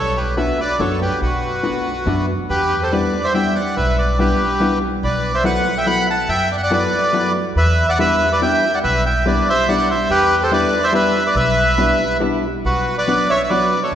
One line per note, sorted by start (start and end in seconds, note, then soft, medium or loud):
0.00 0.50 B1 medium
0.00 0.17 A4 medium
0.00 0.19 C#5 medium
0.17 0.36 G4 medium
0.17 0.35 B4 medium
0.37 0.59 A3 medium
0.37 0.59 B3 medium
0.37 0.59 D4 medium
0.37 0.59 F#4 medium
0.37 0.57 B4 medium
0.37 0.60 E5 medium
0.60 0.79 B4 medium
0.60 0.81 D5 medium
0.79 1.07 F#2 medium
0.79 1.02 A3 medium
0.79 1.02 B3 medium
0.79 1.02 D4 medium
0.79 1.02 F#4 medium
0.79 1.00 A4 medium
0.79 1.00 C#5 medium
1.02 1.20 G4 soft
1.02 1.21 B4 medium
1.21 1.77 B1 medium
1.21 2.26 F#4 medium
1.21 2.26 B4 medium
1.63 1.86 A3 soft
1.63 1.86 B3 medium
1.63 1.86 D4 soft
1.63 1.86 F#4 medium
2.06 2.34 F#2 medium
2.06 2.29 A3 medium
2.06 2.29 B3 medium
2.06 2.30 D4 medium
2.06 2.30 F#4 medium
2.50 3.05 E2 medium
2.50 2.80 G4 medium
2.50 2.83 B4 medium
2.83 2.92 A4 medium
2.83 2.93 C5 medium
2.92 3.15 G3 medium
2.92 3.15 B3 medium
2.92 3.15 D4 medium
2.92 3.15 E4 medium
2.92 3.22 B4 medium
2.92 3.25 D5 medium
3.24 3.34 C5 medium
3.24 3.33 E5 medium
3.34 3.57 G3 medium
3.34 3.56 B3 medium
3.34 3.57 D4 medium
3.34 3.57 E4 medium
3.34 3.55 E5 medium
3.34 3.57 G5 medium
3.55 3.75 D5 medium
3.55 3.77 F#5 medium
3.77 4.32 B1 medium
3.77 3.97 B4 medium
3.77 3.99 E5 medium
3.98 4.17 B4 medium
3.98 4.19 D5 medium
4.19 4.41 G3 medium
4.19 4.41 B3 soft
4.19 4.41 D4 medium
4.19 4.41 E4 medium
4.19 4.79 G4 medium
4.19 4.79 B4 medium
4.60 4.82 G3 medium
4.60 4.82 B3 medium
4.60 4.82 D4 medium
4.60 4.83 E4 medium
5.03 5.57 B1 medium
5.03 5.32 B4 medium
5.03 5.36 D5 medium
5.35 5.44 C5 medium
5.35 5.45 E5 medium
5.44 5.66 F#3 medium
5.44 5.66 A3 medium
5.44 5.66 B3 medium
5.44 5.66 E4 medium
5.44 5.74 B4 medium
5.44 5.77 F#5 medium
5.78 5.86 E5 medium
5.78 5.87 G5 medium
5.86 6.08 F#3 medium
5.86 6.08 A3 medium
5.86 6.09 B3 medium
5.86 6.09 E4 medium
5.86 6.07 F#5 medium
5.86 6.09 B5 loud
6.10 6.28 F#5 medium
6.10 6.30 A5 medium
6.28 6.84 F#2 medium
6.28 6.50 E5 medium
6.28 6.51 G5 loud
6.52 6.56 D5 medium
6.52 6.56 F#5 medium
6.57 6.62 F#5 medium
6.63 6.71 D5 medium
6.63 6.72 F#5 medium
6.71 6.93 F#3 medium
6.71 6.93 A3 medium
6.71 6.93 B3 medium
6.71 6.93 E4 medium
6.71 7.32 B4 medium
6.71 7.33 D5 medium
7.13 7.35 F#3 medium
7.13 7.36 A3 medium
7.13 7.36 B3 medium
7.13 7.36 E4 medium
7.56 8.11 E2 medium
7.56 7.87 B4 medium
7.56 7.90 E5 medium
7.89 7.98 D5 medium
7.89 7.98 F#5 medium
7.99 8.21 G3 medium
7.99 8.21 B3 medium
7.99 8.21 D4 medium
7.99 8.21 E4 medium
7.99 8.30 B4 medium
7.99 8.33 E5 medium
8.32 8.41 B4 medium
8.32 8.42 D5 medium
8.41 8.63 G3 medium
8.41 8.64 B3 medium
8.41 8.64 D4 medium
8.41 8.64 E4 medium
8.41 8.72 E5 medium
8.41 8.75 G5 medium
8.74 8.79 D5 medium
8.74 8.79 F#5 medium
8.84 9.39 B1 medium
8.84 9.04 B4 medium
8.84 9.04 E5 medium
9.06 9.25 E5 medium
9.06 9.27 G5 medium
9.26 9.48 G3 medium
9.26 9.48 B3 medium
9.26 9.48 D4 medium
9.26 9.48 E4 medium
9.26 9.47 B4 medium
9.26 9.49 D5 medium
9.50 9.67 C5 medium
9.50 9.69 E5 loud
9.68 9.90 G3 medium
9.68 9.90 B3 medium
9.68 9.91 D4 medium
9.68 9.91 E4 medium
9.68 9.88 D5 medium
9.68 9.91 F#5 medium
9.90 10.09 C5 medium
9.90 10.11 E5 medium
10.10 10.64 E2 medium
10.10 10.40 G4 medium
10.10 10.43 B4 loud
10.43 10.51 A4 medium
10.43 10.53 C5 medium
10.51 10.73 G3 medium
10.51 10.73 B3 medium
10.51 10.73 D4 medium
10.51 10.74 E4 medium
10.51 10.82 B4 medium
10.51 10.85 D5 medium
10.84 10.93 C5 medium
10.84 10.93 E5 loud
10.93 11.15 G3 medium
10.93 11.15 B3 medium
10.93 11.15 D4 medium
10.93 11.15 E4 medium
10.93 11.24 B4 medium
10.93 11.27 E5 medium
11.27 11.35 B4 medium
11.27 11.36 D5 medium
11.35 11.91 B1 loud
11.35 12.17 B4 medium
11.35 12.17 E5 medium
11.78 12.00 G3 medium
11.78 12.00 B3 medium
11.78 12.01 D4 medium
11.78 12.00 E4 medium
12.20 12.43 G3 medium
12.20 12.43 B3 medium
12.20 12.44 D4 medium
12.20 12.43 E4 medium
12.65 13.20 B1 medium
12.65 12.95 F#4 medium
12.65 12.97 B4 medium
12.98 13.28 B4 medium
12.98 13.31 D5 medium
13.07 13.29 F#3 medium
13.07 13.30 B3 medium
13.07 13.30 D4 medium
13.07 13.30 F#4 medium
13.30 13.42 C#5 medium
13.30 13.42 E5 loud
13.44 13.50 E5 medium
13.49 13.72 F#3 medium
13.49 13.72 B3 medium
13.49 13.72 D4 medium
13.49 13.73 F#4 medium
13.49 13.80 B4 medium
13.49 13.83 D5 medium
13.83 13.93 A4 medium
13.83 13.93 C#5 medium
13.92 13.95 G1 medium